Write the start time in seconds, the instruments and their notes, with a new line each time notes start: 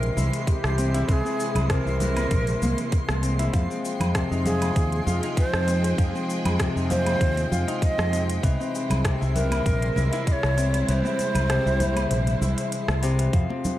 Already playing: harp C3 E3 C4 E4, string section C3 E3 G#3 E4 G5, ney A#4, synth texture C6
0.03 closed hi-hat
0.17 fretless electric bass C2, harp E4, muted conga, low conga, cabasa
0.33 closed hi-hat, cabasa
0.47 ney G4, kick, closed hi-hat, cabasa
0.64 fretless electric bass C2, cross-stick, cabasa
0.78 harp C4, closed hi-hat, muted conga, cabasa
0.94 harp E4, closed hi-hat, cabasa
1.08 fretless electric bass C2, harp E3, ney G#4 A#4, kick, closed hi-hat, cabasa
1.25 harp C4, muted conga, cabasa
1.40 cabasa
1.55 fretless electric bass C2, closed hi-hat, low conga, cabasa, low woodblock
1.70 harp C3, ney A#4, kick, cross-stick, closed hi-hat, cabasa
1.86 fretless electric bass C2, harp E4, cabasa
2.00 harp E3, closed hi-hat, high conga, low conga, cabasa
2.17 closed hi-hat, high conga, cabasa, low woodblock
2.31 fretless electric bass A#1, kick, closed hi-hat, cabasa
2.47 closed hi-hat, muted conga, cabasa
2.62 fretless electric bass C2, harp A#3, low conga, cabasa
2.78 closed hi-hat, cabasa
2.92 kick, closed hi-hat, cabasa
3.09 fretless electric bass C2, cross-stick, muted conga, cabasa
3.23 harp C4, closed hi-hat, cabasa
3.39 harp E4, closed hi-hat, cabasa
3.53 fretless electric bass F2, harp F3, string section F3, kick, closed hi-hat, cabasa
3.70 harp C4, string section G5, cabasa
3.85 cabasa
4.00 fretless electric bass F2, closed hi-hat, low conga, cabasa, low woodblock
4.15 harp C3, kick, cross-stick, closed hi-hat, cabasa
4.30 fretless electric bass F2, harp D#4, string section G#4, cabasa
4.46 harp F3, ney G#4, closed hi-hat, low conga, cabasa
4.62 closed hi-hat, high conga, cabasa, low woodblock
4.76 fretless electric bass D#2, kick, closed hi-hat, muted conga, cabasa
4.92 closed hi-hat
5.06 fretless electric bass F2, harp F4, muted conga, low conga, cabasa
5.23 harp D#4, closed hi-hat, cabasa
5.37 ney C5, kick, closed hi-hat, cabasa
5.54 fretless electric bass F2, cross-stick, cabasa
5.68 harp C4, closed hi-hat, muted conga, cabasa
5.84 closed hi-hat, cabasa
5.98 fretless electric bass F2, harp F3, kick, closed hi-hat, cabasa
6.15 harp C4, muted conga, cabasa
6.30 cabasa
6.45 fretless electric bass F2, closed hi-hat, low conga, cabasa, low woodblock
6.60 harp C3, kick, cross-stick, closed hi-hat, cabasa
6.76 fretless electric bass F2, harp D#4, cabasa
6.90 harp F3, ney C5, closed hi-hat, high conga, low conga, cabasa
7.06 closed hi-hat, high conga, cabasa, low woodblock
7.21 fretless electric bass D#2, kick, closed hi-hat, cabasa
7.37 closed hi-hat, muted conga, cabasa
7.52 fretless electric bass F2, harp F4, low conga, cabasa
7.67 harp D#4, closed hi-hat, cabasa
7.82 ney D#5, kick, closed hi-hat, cabasa
7.98 fretless electric bass F2, cross-stick, muted conga, cabasa
8.13 harp C4, closed hi-hat, cabasa
8.30 closed hi-hat, cabasa
8.43 fretless electric bass C2, string section C3, harp E3, kick, closed hi-hat, cabasa
8.60 harp C4, cabasa
8.68 string section G3 E4
8.75 cabasa
8.90 fretless electric bass C2, closed hi-hat, low conga, cabasa, low woodblock
9.05 harp C3, kick, cross-stick, closed hi-hat, cabasa
9.21 fretless electric bass C2, harp E4, cabasa
9.35 harp E3, ney A#4, closed hi-hat, low conga, cabasa
9.51 closed hi-hat, high conga, cabasa, low woodblock
9.66 fretless electric bass A#1, kick, closed hi-hat, muted conga, cabasa
9.82 closed hi-hat
9.96 fretless electric bass C2, harp E4, muted conga, low conga, cabasa
10.13 harp E4, closed hi-hat, cabasa
10.27 ney D#5, kick, closed hi-hat, cabasa
10.32 ney C#5
10.43 fretless electric bass C2, cross-stick, cabasa
10.57 harp C4, closed hi-hat, muted conga, cabasa
10.74 closed hi-hat, cabasa
10.88 fretless electric bass C2, harp E3, ney C#5, closed hi-hat, cabasa
10.94 ney C5
11.05 harp C4, muted conga, cabasa
11.19 closed hi-hat, high conga, cabasa
11.35 fretless electric bass C2, closed hi-hat, low conga, cabasa, low woodblock
11.50 harp C3, cross-stick, closed hi-hat, cabasa
11.66 fretless electric bass C2, harp E4, cabasa
11.80 harp E3, closed hi-hat, high conga, low conga, cabasa
11.96 closed hi-hat, high conga, cabasa, low woodblock
12.11 fretless electric bass A#1, closed hi-hat, cabasa
12.27 closed hi-hat, muted conga, cabasa
12.41 fretless electric bass C2, harp E4, low conga, cabasa
12.58 closed hi-hat, cabasa
12.72 closed hi-hat, cabasa
12.88 fretless electric bass C2, cross-stick, muted conga, cabasa
13.03 harp C3, closed hi-hat, cabasa
13.19 harp E3, closed hi-hat, cabasa
13.33 fretless electric bass F2, harp F3, string section F3, kick, closed hi-hat, cabasa
13.49 harp C4, muted conga
13.65 low conga, cabasa